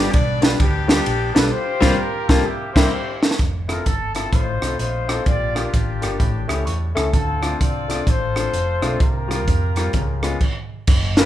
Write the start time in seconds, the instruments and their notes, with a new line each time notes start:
Already playing: grand piano G2, horn section B3 D4 G4
0.12 fingered electric bass B1, horn section D5, kick, ride
0.41 grand piano G3 B3 D4 F4 G4, horn section B4, snare, ride
0.59 fingered electric bass D2, horn section B3 D4 G4, kick, ride
0.87 grand piano G3 B3 D4 F4 G4, horn section B3 D4 G4, snare, ride
1.06 fingered electric bass A#1, ride
1.34 fingered electric bass B1, grand piano G3 B3 D4 F4 A4, horn section B4, snare, ride
1.51 horn section F4 G4 C5
1.80 fingered electric bass C2, grand piano G3 A#3 C4 F4 G4, kick, snare, crash
1.98 horn section A#4
2.27 fingered electric bass C2, grand piano G3 A#3 C4 F4, horn section A4, kick, snare
2.44 horn section A#3 E4 G4
2.73 fingered electric bass C2, grand piano G3 A#3 C4 E4, horn section E4 G4 C5, kick, snare, crash
2.77 grand piano G4
3.23 snare
3.31 snare
3.39 fingered electric bass F1, kick, closed hi-hat
3.68 grand piano C4 E4 F4 A4, horn section A#4, cross-stick, closed hi-hat
3.85 fingered electric bass G1, horn section A4, kick, closed hi-hat
4.15 grand piano C4 E4 F4 A4, horn section A4, cross-stick, closed hi-hat
4.32 fingered electric bass A1, grand piano A2, horn section D#4 F4 C5, kick, closed hi-hat
4.61 fingered electric bass C2, grand piano C4 D#4 F4 A4, cross-stick, closed hi-hat
4.79 fingered electric bass A#1, horn section D#4 F4 C5, closed hi-hat
5.08 grand piano C4 D#4 F4 A4, cross-stick, closed hi-hat
5.25 fingered electric bass A#1, grand piano A#2, horn section F4 G4 D5, kick, closed hi-hat
5.55 grand piano A#3 D4 F4 G4, horn section D4 G4, cross-stick, closed hi-hat
5.74 fingered electric bass A1, kick, closed hi-hat
6.02 fingered electric bass G1, grand piano A#3 D4 F4 G4, cross-stick, closed hi-hat
6.19 fingered electric bass A1, grand piano A2, kick, closed hi-hat
6.48 fingered electric bass C#2, grand piano A3 C#4 E4 G4, cross-stick, closed hi-hat
6.66 fingered electric bass E2, grand piano C#6, closed hi-hat
6.95 fingered electric bass C#2, grand piano A3 C#4 E4 A4, cross-stick, closed hi-hat
7.13 fingered electric bass D2, grand piano D3, horn section C4 F4 A4, kick, closed hi-hat
7.42 grand piano A3 C4 D4 F4, cross-stick, closed hi-hat
7.60 fingered electric bass C2, horn section F4 A4 D5, kick, closed hi-hat
7.88 grand piano A3 C4 D4 F4, cross-stick, closed hi-hat
8.07 fingered electric bass A1, horn section F4 A4 C5, kick, closed hi-hat
8.36 grand piano A3 C4 D4 F4, cross-stick, closed hi-hat
8.53 fingered electric bass F1, closed hi-hat
8.82 fingered electric bass B1, grand piano A3 C4 D4 F4, cross-stick, closed hi-hat
8.99 fingered electric bass C2, grand piano C3, horn section F4 G4 A#4, kick, closed hi-hat
9.27 grand piano G3 A#3 C4 F4, cross-stick, closed hi-hat
9.47 fingered electric bass F2, kick, closed hi-hat
9.76 grand piano G3 A#3 C4 F4, cross-stick, closed hi-hat
9.93 fingered electric bass C#2, grand piano C#3, kick, closed hi-hat
10.23 grand piano G#3 B3 C#4 F4, cross-stick, closed hi-hat
10.41 kick, crash
10.87 fingered electric bass F#1, kick, crash
11.17 grand piano A#3 C#4 F4 F#4 A#4, horn section B4, snare, ride